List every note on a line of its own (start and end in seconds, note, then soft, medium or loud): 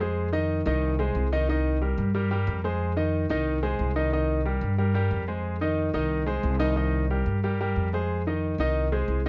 0.00 0.60 F2 loud
0.00 0.27 G#3 medium
0.00 0.28 G#4 medium
0.00 0.28 C5 medium
0.33 0.60 D#3 medium
0.33 0.60 D#4 medium
0.33 0.60 D#5 loud
0.66 1.12 C2 loud
0.66 0.93 D#3 loud
0.66 0.94 D#4 loud
0.66 0.94 D#5 medium
0.99 1.26 G#3 medium
0.99 1.26 G#4 medium
0.99 1.27 C5 medium
1.15 1.92 C2 medium
1.32 1.46 D#3 medium
1.32 1.46 D#4 loud
1.32 1.46 D#5 loud
1.49 1.76 D#3 medium
1.49 1.76 D#4 medium
1.49 1.76 D#5 medium
1.81 2.09 G3 medium
1.81 2.09 G4 medium
1.81 2.09 A#4 medium
1.98 2.44 G2 loud
2.14 2.28 G3 medium
2.14 2.28 G4 medium
2.14 2.28 A#4 medium
2.31 2.58 G3 medium
2.31 2.58 G4 medium
2.31 2.58 A#4 medium
2.47 3.24 F2 loud
2.64 2.91 G#3 medium
2.64 2.92 G#4 medium
2.64 2.92 C5 medium
2.97 3.24 D#3 medium
2.97 3.24 D#4 medium
2.97 3.24 D#5 medium
3.29 3.76 C2 medium
3.29 3.57 D#3 loud
3.29 3.57 D#4 loud
3.29 3.58 D#5 medium
3.63 3.90 G#3 medium
3.63 3.90 G#4 medium
3.63 3.90 C5 medium
3.79 4.56 C2 medium
3.96 4.09 D#3 medium
3.96 4.10 D#4 medium
3.96 4.10 D#5 medium
4.12 4.40 D#3 medium
4.12 4.40 D#4 medium
4.12 4.40 D#5 medium
4.45 4.73 G3 medium
4.45 4.73 G4 medium
4.45 4.73 A#4 medium
4.61 5.08 G2 loud
4.78 4.92 G3 medium
4.78 4.92 G4 medium
4.78 4.92 A#4 medium
4.94 5.22 G3 medium
4.94 5.22 G4 medium
4.94 5.22 A#4 medium
5.11 5.88 F2 medium
5.28 5.55 G#3 medium
5.28 5.55 G#4 medium
5.28 5.55 C5 medium
5.61 5.88 D#3 medium
5.61 5.88 D#4 medium
5.61 5.89 D#5 medium
5.93 6.40 C2 medium
5.93 6.21 D#3 loud
5.93 6.21 D#4 loud
5.93 6.21 D#5 medium
6.26 6.54 G#3 medium
6.26 6.54 G#4 medium
6.26 6.55 C5 medium
6.43 7.21 C2 loud
6.59 6.73 D#3 loud
6.59 6.73 D#4 loud
6.59 6.74 D#5 loud
6.76 7.04 D#3 medium
6.76 7.04 D#4 medium
6.76 7.04 D#5 medium
7.10 7.37 G3 medium
7.10 7.38 G4 medium
7.10 7.37 A#4 medium
7.26 7.72 G2 medium
7.44 7.57 G3 medium
7.44 7.57 G4 medium
7.44 7.57 A#4 medium
7.61 7.87 G3 medium
7.61 7.87 G4 medium
7.61 7.88 A#4 medium
7.76 8.53 F2 medium
7.93 8.20 G#3 medium
7.93 8.21 G#4 medium
7.93 8.21 C5 medium
8.27 8.54 D#3 medium
8.27 8.54 D#4 medium
8.27 8.54 D#5 medium
8.58 9.05 C2 medium
8.58 8.87 D#3 medium
8.58 8.87 D#4 loud
8.58 8.87 D#5 loud
8.92 9.19 G#3 medium
8.92 9.19 G#4 medium
8.92 9.20 C5 medium
9.08 9.29 C2 medium
9.26 9.29 D#3 medium